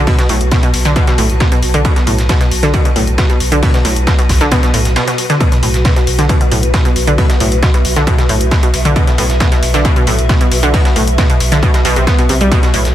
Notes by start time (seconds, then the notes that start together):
Already playing: F#4 B4 A5
0.07 B2, kick, closed hi-hat, open hi-hat
0.19 B2, snare, closed hi-hat
0.29 B1 A2, open hi-hat, ride
0.41 B1, closed hi-hat
0.51 B2, kick, snare, closed hi-hat, ride
0.63 B2, closed hi-hat, ride
0.74 B1, open hi-hat, ride
0.85 B1 D3, snare, closed hi-hat
0.96 B2, kick, closed hi-hat, ride
1.07 B2, snare, closed hi-hat
1.18 B1 A2, open hi-hat, ride
1.30 B1, closed hi-hat
1.40 B2, kick, snare, closed hi-hat, ride
1.52 B2, closed hi-hat, ride
1.62 B1, open hi-hat, ride
1.74 B1 D3, closed hi-hat
1.85 B2, kick, closed hi-hat, ride
1.96 B2, snare, closed hi-hat
2.07 B1 A2, open hi-hat, ride
2.18 B1, snare, closed hi-hat
2.29 B2, kick, snare, closed hi-hat, ride
2.41 B2, snare, closed hi-hat
2.51 B1, open hi-hat, ride
2.63 B1 D3, snare, closed hi-hat
2.74 B2, kick, closed hi-hat, ride
2.85 B2, closed hi-hat
2.96 B1 A2, open hi-hat, ride
3.07 B1, closed hi-hat
3.18 B2, kick, snare, closed hi-hat, ride
3.30 B2, closed hi-hat
3.40 B1, open hi-hat, ride
3.52 B1 D3, closed hi-hat
3.63 B2, kick, closed hi-hat, open hi-hat
3.74 B2, snare, closed hi-hat
3.85 B1 A2, open hi-hat, ride
3.96 B1, closed hi-hat
4.07 B2, kick, snare, closed hi-hat, ride
4.19 B2, closed hi-hat, ride
4.29 B1, kick, snare, open hi-hat, ride
4.41 B1 D3, snare, closed hi-hat
4.52 B2, kick, snare, closed hi-hat, ride
4.63 B2, snare, closed hi-hat
4.74 B1 A2, open hi-hat, ride
4.85 B1, snare, closed hi-hat
4.96 B2, snare, closed hi-hat, ride
5.08 B2, snare, closed hi-hat
5.18 open hi-hat, ride
5.30 D3, snare, closed hi-hat
5.40 B2, kick, closed hi-hat, ride
5.52 B2, snare, closed hi-hat
5.60 B1 A2 E5, open hi-hat, ride
5.74 B1, snare, closed hi-hat
5.85 B2, kick, snare, closed hi-hat, ride
5.96 B2, snare, closed hi-hat
6.07 B1, open hi-hat, ride
6.19 B1 D3, snare, closed hi-hat
6.29 B2, kick, closed hi-hat, ride
6.41 B2, closed hi-hat
6.51 B1 A2, open hi-hat, ride
6.63 B1, closed hi-hat
6.74 B2, kick, snare, closed hi-hat, ride
6.85 B2, closed hi-hat
6.96 B1, open hi-hat, ride
7.07 B1 D3, closed hi-hat
7.18 B2, kick, closed hi-hat, open hi-hat
7.30 B2, snare, closed hi-hat
7.40 B1 A2, open hi-hat, ride
7.52 B1, closed hi-hat
7.63 B2, kick, snare, closed hi-hat, ride
7.74 B2, closed hi-hat, ride
7.85 B1, open hi-hat, ride
7.96 B1 D3, snare, closed hi-hat
8.07 B2, kick, closed hi-hat, ride
8.18 B2, snare, closed hi-hat
8.29 B1 A2, open hi-hat, ride
8.41 B1, closed hi-hat
8.51 B2, kick, snare, closed hi-hat, ride
8.63 B2, closed hi-hat, ride
8.74 B1, open hi-hat, ride
8.85 B1 D3, closed hi-hat
8.96 B2, kick, closed hi-hat, ride
9.07 B2, snare, closed hi-hat
9.18 B1 A2, open hi-hat, ride
9.30 B1, snare, closed hi-hat
9.40 B2, kick, snare, closed hi-hat, ride
9.52 B2, snare, closed hi-hat
9.63 B1, open hi-hat, ride
9.74 B1 D3, snare, closed hi-hat
9.85 B2, kick, closed hi-hat, ride
9.96 B2, closed hi-hat
10.07 B1 A2, open hi-hat, ride
10.19 B1, closed hi-hat
10.29 B2, kick, snare, closed hi-hat, ride
10.41 B2, closed hi-hat
10.51 B1, open hi-hat, ride
10.63 B1 D3, closed hi-hat
10.74 B2, kick, closed hi-hat, open hi-hat
10.85 B2, snare, closed hi-hat
10.96 B1 A2, open hi-hat, ride
11.07 B1, closed hi-hat
11.18 B2, kick, snare, closed hi-hat, ride
11.30 B2, closed hi-hat, ride
11.40 B1, open hi-hat, ride
11.52 B1 D3, snare, closed hi-hat
11.63 B2, kick, closed hi-hat, ride
11.74 B2, snare, closed hi-hat
11.85 B1 B2, open hi-hat, ride
11.96 B1 C3, closed hi-hat
12.07 B3, kick, snare, closed hi-hat, ride
12.19 B2, closed hi-hat, ride
12.29 B1 C3, open hi-hat, ride
12.41 B1 G3, closed hi-hat
12.52 B2, kick, closed hi-hat, ride
12.63 B2, snare, closed hi-hat
12.74 B1 A2, open hi-hat, ride
12.85 B1, snare, closed hi-hat